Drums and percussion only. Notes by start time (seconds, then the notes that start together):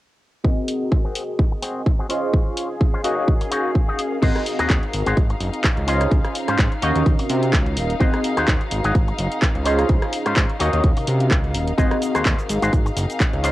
0.45 kick
0.68 open hi-hat
0.92 kick
1.15 open hi-hat
1.39 kick
1.62 open hi-hat
1.86 kick
2.10 open hi-hat
2.34 kick
2.57 open hi-hat
2.81 kick
3.04 open hi-hat
3.28 kick
3.41 open hi-hat
3.52 open hi-hat
3.75 kick
3.99 open hi-hat
4.23 kick, closed hi-hat, crash
4.36 cross-stick, closed hi-hat
4.46 open hi-hat
4.59 cross-stick, closed hi-hat
4.70 kick, clap, closed hi-hat
4.83 closed hi-hat
4.93 open hi-hat
5.06 closed hi-hat
5.17 kick, closed hi-hat
5.30 closed hi-hat
5.40 open hi-hat
5.54 closed hi-hat
5.64 kick, clap, closed hi-hat
5.77 closed hi-hat
5.88 open hi-hat
6.01 cross-stick, closed hi-hat
6.11 kick, closed hi-hat
6.25 cross-stick, closed hi-hat
6.35 open hi-hat
6.48 cross-stick, closed hi-hat
6.59 kick, clap, closed hi-hat
6.72 closed hi-hat
6.82 open hi-hat
6.95 closed hi-hat
7.06 kick, closed hi-hat
7.19 open hi-hat
7.29 open hi-hat
7.43 closed hi-hat
7.53 kick, clap, closed hi-hat
7.66 closed hi-hat
7.77 open hi-hat
7.90 closed hi-hat
8.00 kick, closed hi-hat
8.14 cross-stick, closed hi-hat
8.24 open hi-hat
8.37 cross-stick, closed hi-hat
8.48 kick, clap, closed hi-hat
8.61 closed hi-hat
8.71 open hi-hat
8.84 closed hi-hat
8.95 kick, closed hi-hat
9.08 closed hi-hat
9.18 open hi-hat
9.32 closed hi-hat
9.42 kick, clap, closed hi-hat
9.55 closed hi-hat
9.66 open hi-hat
9.79 cross-stick, closed hi-hat
9.89 kick, closed hi-hat
10.02 cross-stick, closed hi-hat
10.13 open hi-hat
10.26 cross-stick, closed hi-hat
10.36 kick, clap, closed hi-hat
10.50 closed hi-hat
10.60 open hi-hat
10.73 closed hi-hat
10.84 kick, closed hi-hat
10.97 open hi-hat
11.07 open hi-hat
11.20 closed hi-hat
11.31 kick, clap, closed hi-hat
11.44 closed hi-hat
11.55 open hi-hat
11.68 closed hi-hat
11.78 kick, closed hi-hat, shaker
11.91 cross-stick, closed hi-hat
12.02 open hi-hat, shaker
12.15 cross-stick, closed hi-hat, shaker
12.26 kick, clap, closed hi-hat, shaker
12.39 closed hi-hat, shaker
12.49 open hi-hat, shaker
12.62 closed hi-hat, shaker
12.73 kick, closed hi-hat, shaker
12.86 closed hi-hat, shaker
12.97 open hi-hat, shaker
13.10 closed hi-hat, shaker
13.20 kick, clap, closed hi-hat, shaker
13.33 closed hi-hat
13.44 open hi-hat, shaker